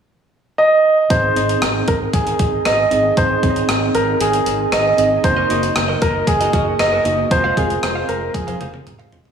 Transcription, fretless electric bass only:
1.10 G#1
1.36 G#1
1.62 G#1
1.88 G#1
2.14 G#1
2.40 G#1
2.66 G#1
2.92 G#1
3.17 G#1
3.43 G#1
3.69 G#1
3.95 G#1
4.21 G#1
4.46 G#1
4.72 G#1
4.98 G#1
5.24 F#1
5.50 F#1
5.76 F#1
6.02 F#1
6.27 F#1
6.53 F#1
6.79 F#1
7.05 F#1
7.31 F1
7.57 F1
7.83 F1
8.09 F1
8.34 F1
8.60 F1
8.86 F1
9.12 F1

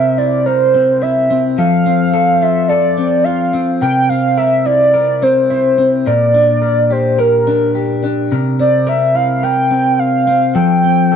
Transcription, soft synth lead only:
Already playing: E5
0.18 D5
0.46 C5
1.02 E5
1.58 F5
2.42 E5
2.68 D5
3.24 F5
3.81 G5
4.09 F5
4.37 E5
4.66 D5
5.23 C5
5.50 C5
6.06 D5
6.92 C5
7.20 A#4
8.60 D5
8.88 E5
9.15 F5
9.43 G5
9.99 F5
10.54 G5

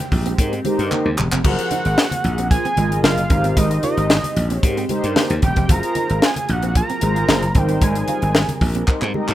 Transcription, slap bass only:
0.12 A#1
0.39 G#2
0.79 G2
1.05 D#2
1.18 E1
1.32 F1
1.45 F#1
1.85 G#1
2.24 A#1
2.77 G#1
3.04 F#1
3.30 G#1
3.57 G#1
3.97 G#1
4.36 A#1
4.63 G#2
5.04 G2
5.30 D#2
5.43 E1
5.57 F1
5.69 F#1
6.10 G#1
6.49 A#1
7.02 G#1
7.29 F#1
7.55 G#1
7.82 G#1
8.22 G#1
8.61 A#1
9.02 G#2
9.29 G#2

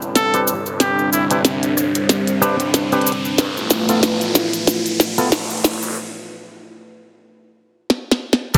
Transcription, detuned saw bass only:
0.02 A1
0.66 G1
1.12 A1
1.45 C2
1.77 A1
1.95 A1
2.09 C2
2.60 A1
3.38 G1
3.89 G1
5.18 G1
5.82 F1
8.54 A1

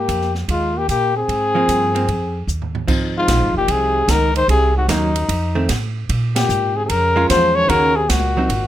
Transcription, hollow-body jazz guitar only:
1.55 F3 A#3 C4
1.95 F3 A#3 C4
2.88 F3 C4 D#4
4.89 F#3 A#3 D#4
5.55 D#3 A3 C4
7.16 G#3 C#4 F4
7.69 D#3 A#3 C#4 F#4
8.37 F#3 C4 D#4

